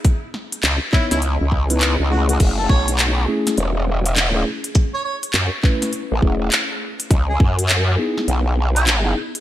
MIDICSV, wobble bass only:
0, 0, Header, 1, 2, 480
1, 0, Start_track
1, 0, Tempo, 588235
1, 38, Time_signature, 4, 2, 24, 8
1, 7672, End_track
2, 0, Start_track
2, 0, Title_t, "Wobble bass"
2, 0, Program_c, 0, 39
2, 518, Note_on_c, 0, 37, 96
2, 647, Note_off_c, 0, 37, 0
2, 911, Note_on_c, 0, 37, 95
2, 1127, Note_off_c, 0, 37, 0
2, 1152, Note_on_c, 0, 37, 98
2, 1607, Note_off_c, 0, 37, 0
2, 1632, Note_on_c, 0, 37, 92
2, 1945, Note_off_c, 0, 37, 0
2, 1959, Note_on_c, 0, 30, 94
2, 2185, Note_off_c, 0, 30, 0
2, 2198, Note_on_c, 0, 35, 102
2, 2664, Note_off_c, 0, 35, 0
2, 2921, Note_on_c, 0, 28, 100
2, 3418, Note_off_c, 0, 28, 0
2, 3418, Note_on_c, 0, 27, 100
2, 3626, Note_off_c, 0, 27, 0
2, 4357, Note_on_c, 0, 42, 98
2, 4486, Note_off_c, 0, 42, 0
2, 4993, Note_on_c, 0, 33, 99
2, 5065, Note_off_c, 0, 33, 0
2, 5079, Note_on_c, 0, 28, 98
2, 5305, Note_off_c, 0, 28, 0
2, 5799, Note_on_c, 0, 37, 97
2, 6025, Note_off_c, 0, 37, 0
2, 6039, Note_on_c, 0, 42, 96
2, 6505, Note_off_c, 0, 42, 0
2, 6757, Note_on_c, 0, 35, 98
2, 7464, Note_off_c, 0, 35, 0
2, 7672, End_track
0, 0, End_of_file